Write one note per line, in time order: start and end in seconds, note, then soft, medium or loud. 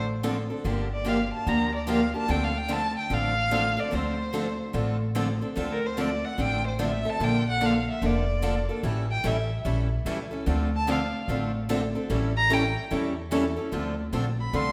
0.00 0.48 A1 medium
0.23 0.35 D3 medium
0.23 0.35 F3 medium
0.23 0.36 A3 medium
0.23 0.35 C4 medium
0.23 0.35 D4 medium
0.23 0.36 F4 medium
0.23 0.36 A4 loud
0.50 0.65 C4 soft
0.50 0.64 D4 soft
0.50 0.64 A4 soft
0.64 1.30 G1 medium
0.64 0.87 D3 medium
0.64 0.87 F3 medium
0.64 0.87 A#3 medium
0.64 0.87 D4 medium
0.64 0.87 G4 medium
0.93 1.10 D5 medium
1.04 1.17 D3 medium
1.04 1.17 F3 medium
1.04 1.17 A#3 medium
1.04 1.17 D4 medium
1.04 1.17 G4 loud
1.09 1.33 F5 medium
1.33 1.50 A5 medium
1.47 2.12 D2 medium
1.47 1.69 D3 medium
1.47 1.69 F3 medium
1.47 1.69 A#3 medium
1.47 1.69 D4 medium
1.47 1.69 G4 medium
1.47 1.74 A#5 medium
1.76 1.91 D5 medium
1.87 1.99 D3 medium
1.87 1.99 F3 medium
1.87 1.99 A#3 medium
1.87 1.99 D4 medium
1.87 2.00 G4 loud
1.87 2.15 F5 medium
2.14 2.28 A#3 soft
2.14 2.28 D4 soft
2.14 2.28 G4 soft
2.14 2.32 A5 medium
2.28 2.94 D2 medium
2.28 2.50 D3 medium
2.28 2.50 F3 medium
2.28 2.51 A3 medium
2.28 2.50 C4 medium
2.28 2.51 D4 medium
2.28 2.51 F4 medium
2.28 2.51 A4 medium
2.28 2.45 G5 medium
2.44 2.59 F5 medium
2.58 2.74 G5 medium
2.68 2.81 D3 medium
2.68 2.81 F3 medium
2.68 2.81 A3 medium
2.68 2.81 C4 medium
2.68 2.81 D4 medium
2.68 2.81 F4 medium
2.68 2.81 A4 medium
2.72 2.97 A5 medium
2.98 3.15 G5 medium
3.10 3.76 A1 medium
3.10 3.32 D3 medium
3.10 3.32 F3 medium
3.10 3.32 A3 medium
3.10 3.32 C4 medium
3.10 3.33 D4 medium
3.10 3.32 F4 medium
3.10 3.33 A4 medium
3.10 3.81 F5 loud
3.51 3.63 D3 medium
3.51 3.63 F3 medium
3.51 3.63 A3 medium
3.51 3.63 C4 medium
3.51 3.63 D4 medium
3.51 3.63 F4 medium
3.51 3.63 A4 medium
3.77 3.90 C4 soft
3.77 3.90 D4 soft
3.77 3.91 A4 medium
3.77 3.96 D5 medium
3.91 4.58 D2 medium
3.91 4.14 D3 medium
3.91 4.14 F3 medium
3.91 4.14 A3 medium
3.91 4.14 C4 medium
3.91 4.14 D4 medium
3.91 4.15 F4 medium
3.91 4.14 A4 medium
3.91 4.76 C5 medium
4.33 4.45 D3 medium
4.33 4.45 F3 medium
4.33 4.46 A3 medium
4.33 4.45 C4 medium
4.33 4.45 D4 medium
4.33 4.46 F4 medium
4.33 4.45 A4 medium
4.73 5.40 A1 medium
4.73 4.96 D3 medium
4.73 4.96 F3 medium
4.73 4.96 A3 medium
4.73 4.96 C4 medium
4.73 4.96 D4 medium
4.73 4.97 F4 medium
4.73 4.96 A4 medium
5.15 5.27 D3 medium
5.15 5.27 F3 loud
5.15 5.27 A3 medium
5.15 5.27 C4 medium
5.15 5.27 D4 medium
5.15 5.27 F4 medium
5.15 5.27 A4 medium
5.41 5.55 C4 soft
5.41 5.55 D4 soft
5.41 5.56 A4 soft
5.56 6.22 D2 medium
5.56 5.78 D3 medium
5.56 5.78 F3 medium
5.56 5.78 A3 medium
5.56 5.78 C4 medium
5.56 5.78 D4 medium
5.56 5.79 F4 medium
5.56 5.78 A4 medium
5.72 5.88 A#4 medium
5.86 6.02 C5 medium
5.97 6.09 D3 medium
5.97 6.09 F3 medium
5.97 6.09 A3 medium
5.97 6.09 C4 medium
5.97 6.09 D4 medium
5.97 6.09 F4 medium
5.97 6.09 A4 medium
5.97 6.27 D5 medium
6.25 6.43 F#5 medium
6.38 7.04 A1 medium
6.38 6.60 D3 medium
6.38 6.60 F3 medium
6.38 6.60 A3 medium
6.38 6.60 C4 medium
6.38 6.60 D4 medium
6.38 6.61 F4 medium
6.38 6.60 A4 medium
6.38 6.66 G5 loud
6.67 6.85 C5 medium
6.79 6.90 D3 medium
6.79 6.91 F3 loud
6.79 6.91 A3 medium
6.79 6.91 C4 medium
6.79 6.91 D4 loud
6.79 6.91 F4 medium
6.79 6.91 A4 medium
6.83 7.11 E5 medium
7.05 7.20 C4 soft
7.05 7.20 D4 soft
7.05 7.19 A4 medium
7.10 7.25 A5 medium
7.20 7.85 A#1 medium
7.20 7.42 D3 medium
7.20 7.42 F3 medium
7.20 7.42 A#3 medium
7.20 7.42 D4 medium
7.20 7.42 A4 medium
7.20 7.48 G5 medium
7.50 7.67 F#5 medium
7.61 7.72 D3 medium
7.61 7.72 F3 medium
7.61 7.72 A#3 medium
7.61 7.73 D4 medium
7.61 7.73 A4 medium
7.65 7.89 F5 medium
7.90 8.08 E5 medium
8.02 8.67 F1 medium
8.02 8.24 D3 medium
8.02 8.23 F3 medium
8.02 8.24 A#3 medium
8.02 8.24 D4 medium
8.02 8.24 A4 medium
8.06 8.71 D5 medium
8.42 8.54 D3 medium
8.42 8.54 F3 medium
8.42 8.54 A#3 medium
8.42 8.54 D4 medium
8.42 8.54 A4 medium
8.69 8.83 A#3 soft
8.69 8.83 D4 soft
8.69 8.83 A4 soft
8.83 9.16 A1 medium
8.83 9.05 E3 medium
8.83 9.05 G3 medium
8.83 9.05 C#4 medium
8.83 9.05 E4 medium
8.83 9.05 A4 medium
9.11 9.28 G5 medium
9.24 9.59 A1 medium
9.24 9.35 E3 medium
9.24 9.35 G3 medium
9.24 9.35 C#4 medium
9.24 9.36 E4 medium
9.24 9.36 A4 medium
9.24 9.66 E5 medium
9.65 10.00 A#1 medium
9.65 9.87 E3 medium
9.65 9.87 G3 medium
9.65 9.87 C#4 medium
9.65 9.87 E4 medium
9.65 9.87 A4 medium
10.05 10.40 C#2 medium
10.05 10.17 E3 medium
10.05 10.17 G3 medium
10.05 10.18 C#4 medium
10.05 10.18 E4 medium
10.05 10.17 A4 medium
10.31 10.46 C#4 soft
10.31 10.46 E4 soft
10.31 10.45 A4 medium
10.46 11.12 D2 medium
10.46 10.68 D3 medium
10.46 10.68 F3 medium
10.46 10.68 A3 medium
10.46 10.68 C4 medium
10.46 10.68 D4 medium
10.46 10.68 F4 medium
10.46 10.69 A4 medium
10.76 10.93 A5 loud
10.87 10.99 D3 medium
10.87 10.99 F3 medium
10.87 10.99 A3 medium
10.87 10.99 C4 medium
10.87 10.99 D4 loud
10.87 10.99 F4 medium
10.87 10.99 A4 medium
10.91 11.30 F5 medium
11.28 11.93 A1 medium
11.28 11.50 D3 medium
11.28 11.50 F3 medium
11.28 11.50 A3 medium
11.28 11.51 C4 medium
11.28 11.51 D4 medium
11.28 11.50 F4 medium
11.28 11.51 A4 medium
11.69 11.80 D3 medium
11.69 11.80 F3 medium
11.69 11.80 A3 medium
11.69 11.80 C4 medium
11.69 11.81 D4 loud
11.69 11.80 F4 loud
11.69 11.81 A4 medium
11.95 12.09 C4 soft
11.95 12.09 D4 soft
11.95 12.09 A4 medium
12.09 12.75 A1 medium
12.09 12.31 E3 medium
12.09 12.31 G3 medium
12.09 12.32 C#4 medium
12.09 12.32 E4 medium
12.09 12.32 A4 medium
12.37 12.55 A#5 loud
12.50 12.61 E3 medium
12.50 12.62 G3 medium
12.50 12.62 C#4 medium
12.50 12.62 E4 medium
12.50 12.62 A4 loud
12.50 12.92 G5 medium
12.91 13.56 E2 medium
12.91 13.12 E3 medium
12.91 13.13 G3 medium
12.91 13.13 C#4 medium
12.91 13.13 E4 medium
12.91 13.13 A4 medium
13.31 13.43 E3 medium
13.31 13.43 G3 medium
13.31 13.43 C#4 loud
13.31 13.44 E4 loud
13.31 13.43 A4 medium
13.57 13.72 C#4 soft
13.57 13.72 E4 soft
13.57 13.71 A4 soft
13.72 14.12 D2 medium
13.72 13.94 D3 medium
13.72 13.94 F3 medium
13.72 13.94 A3 medium
13.72 13.94 C4 medium
13.72 13.94 D4 medium
13.72 13.94 F4 medium
13.72 13.94 A4 medium
14.12 14.52 A#1 medium
14.12 14.25 D3 medium
14.12 14.24 F3 medium
14.12 14.24 A3 medium
14.12 14.25 C4 medium
14.12 14.25 D4 medium
14.12 14.25 F4 medium
14.12 14.25 A4 medium
14.40 14.57 B5 medium
14.53 14.72 C2 medium
14.53 14.72 D3 medium
14.53 14.72 F3 medium
14.53 14.72 A3 medium
14.53 14.72 C4 medium
14.53 14.72 D4 medium
14.53 14.72 F4 medium
14.53 14.72 A4 medium
14.53 14.72 C6 loud